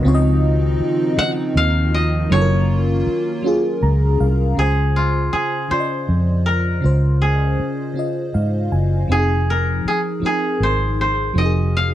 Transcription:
Already playing: F#4 D#5
0.02 C#2 C#3 D#3 F3 C4 D#4
0.06 F4 C#5
0.15 D#5
0.80 muted fingered electric bass stroke
1.16 C#3 F3 C4 F#5, muted fingered electric bass stroke
1.22 D#5
1.56 D#2 F5
1.94 D#5
2.30 F#1 F#3 A#3 C#4 F4 C#5
2.35 A4
2.41 A#4
3.07 muted fingered electric bass stroke
3.42 F#3 C#4 F4
3.47 G#4
3.83 C#2 A#5
4.20 C2 F5
4.54 C#2 C#3 C#4 F4
4.59 G#4 C5
4.96 F4
5.33 G#4, muted fingered electric bass stroke
5.68 C#3 C#4 F4 C5, muted fingered electric bass stroke
5.73 D5
5.80 D#5
6.09 F2
6.46 A#4
6.80 C#3 C#4 F4
6.85 C#2 C5
7.22 G#4
7.60 muted fingered electric bass stroke
7.94 C#3 C#4 F4
7.99 D#5
8.34 G#2 F5
8.72 F#1 G#5
9.08 F1 F3 C4 D#4 G#4
9.13 F#4
9.19 G#4
9.50 A#4
9.85 G#4, muted fingered electric bass stroke
10.20 F3 C4 D#4, muted fingered electric bass stroke
10.25 G#4 A#4
10.60 G#1 C5
11.01 C5
11.34 F1 F3 C4 D#4
11.38 F#4 D#5
11.45 G#4
11.77 F5

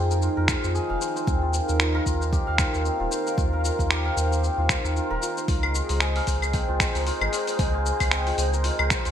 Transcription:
Already playing: F2 C4 D#4 F4 G#4 A#4 C5 F5
0.11 A#4, shaker
0.22 F4, shaker
0.37 F2 A#4
0.48 finger snap, kick, shaker
0.63 F2 C5, shaker
0.75 G#4, shaker
0.90 F1 F5
1.01 C5, shaker
1.16 C5, shaker
1.27 D#2 C4 A#4 F5, kick, shaker
1.42 F4
1.53 C5, shaker
1.68 D#2 A#4, shaker
1.80 F4, finger snap, shaker
1.95 A#4
2.06 D#2 F4, kick, shaker
2.21 C5, shaker
2.32 G4, kick, shaker
2.47 D#2 F5
2.58 C5, finger snap, kick, shaker
2.73 D#2 C5, shaker
2.84 C4, shaker
3.00 D#1 F4
3.11 C5, shaker
3.26 A#4, shaker
3.37 D#2 F4, kick, shaker
3.53 A#4
3.64 F4, shaker
3.79 D#2 C5, kick, shaker
3.90 G4, finger snap, shaker
4.05 F5
4.16 D#2 C5, shaker
4.31 C5, shaker
4.43 C4, shaker
4.58 D#2 F4
4.69 C5, finger snap, kick, shaker
4.84 D#2 A#4, shaker
4.96 F4, shaker
5.11 D#1 A#4
5.22 F4, shaker
5.37 C5, shaker
5.48 C#2 F4 G#4 C5 D#5, kick, open hi-hat, shaker
5.63 A#4, claves
5.74 F4, shaker
5.89 C#2 C5, open hi-hat, shaker
6.00 G#4, finger snap, open hi-hat, shaker
6.16 F5, open hi-hat
6.27 C#2 C5, kick, open hi-hat, shaker
6.42 C5, claves, shaker
6.53 C4, kick, open hi-hat, shaker
6.68 C#2 F4
6.80 C5, finger snap, kick, open hi-hat, shaker
6.95 C#2 A#4, open hi-hat, shaker
7.06 F4, open hi-hat, shaker
7.21 G#1 A#4, claves
7.33 F4, open hi-hat, shaker
7.47 C5, open hi-hat, shaker
7.59 C#2 G#4, kick, open hi-hat, shaker
7.74 F5
7.86 C5, shaker
8.00 C#2 C5, kick, open hi-hat, claves, shaker
8.11 C4, finger snap, open hi-hat, shaker
8.27 F4, open hi-hat
8.38 C#2 C5, open hi-hat, shaker
8.54 A#4, shaker
8.64 F4, open hi-hat, shaker
8.79 C#2 A#4, claves
8.90 F4, finger snap, kick, open hi-hat, shaker
9.05 C#2 C5, open hi-hat, shaker

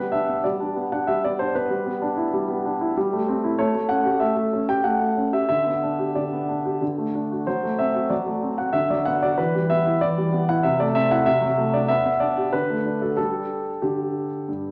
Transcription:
Already playing: G3 B3 B4
0.12 D4 E5
0.29 B3
0.44 G3 D5
0.60 D4
0.76 B3
0.92 D4 F#5
1.07 G3 E5
1.24 B3 D5
1.39 D4 C5
1.55 B3 B4
1.70 G3
1.86 B3
2.02 D4
2.17 E4
2.33 G3
2.49 B3
2.65 D4
2.81 E4
2.97 G3
3.13 A3
3.28 C4
3.44 E4
3.59 A3 C#5
3.75 A3
3.89 C#4 F#5
4.05 G4
4.20 A3 E5
4.37 A3
4.53 C#4
4.69 G4 G5
4.84 A3 F#5
5.00 A3
5.17 C#4
5.33 G4 E5
5.49 D3 E5
5.66 B3
5.83 D4
5.99 G4
6.15 D3 D5
6.32 B3
6.49 D4
6.65 G4
6.81 D3
6.98 A3
7.15 D4
7.31 F#4
7.47 F#3 C5
7.63 A3
7.79 C4 E5
7.94 F#4
8.10 F#3 D5
8.26 A3
8.42 C4
8.58 F#4 F#5
8.73 D3 E5
8.90 F#3 D5
9.05 B3 F#5
9.22 F#4 D5
9.38 E3 B4
9.55 G3
9.70 B3 E5
9.86 E4
10.01 E3 D5
10.18 G3
10.33 B3
10.49 E4 F#5
10.63 C3 E5
10.79 A3 D5
10.95 C4 E5
11.11 E4 F#5
11.26 C3 E5
11.42 F#3
11.57 A3
11.73 D4 D5
11.88 B3 E5
12.05 B3
12.20 D4 D5
12.37 G4
12.53 D3 B4
12.69 A3
12.85 D4
13.01 F#4 A4
13.17 G3 D4 G4 A4
13.82 D3 G4
14.48 G2

